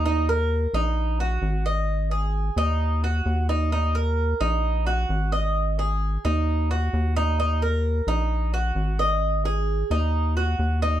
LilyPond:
<<
  \new Staff \with { instrumentName = "Cuban tres" } { \time 4/4 \key ees \minor \tempo 4 = 131 ees'8 bes'4 ees'4 ges'4 ees''8~ | ees''8 aes'4 ees'4 ges'4 ees'8 | ees'8 bes'4 ees'4 ges'4 ees''8~ | ees''8 aes'4 ees'4 ges'4 ees'8 |
ees'8 bes'4 ees'4 ges'4 ees''8~ | ees''8 aes'4 ees'4 ges'4 ees'8 | }
  \new Staff \with { instrumentName = "Analog synth bass" } { \clef bass \time 4/4 \key ees \minor ees,4. bes,,4. aes,,4~ | aes,,4. ees,4. ees,4~ | ees,4. bes,,4. aes,,4~ | aes,,4. ees,4. ees,4~ |
ees,4. bes,,4. aes,,4~ | aes,,4. ees,4. ees,4 | }
>>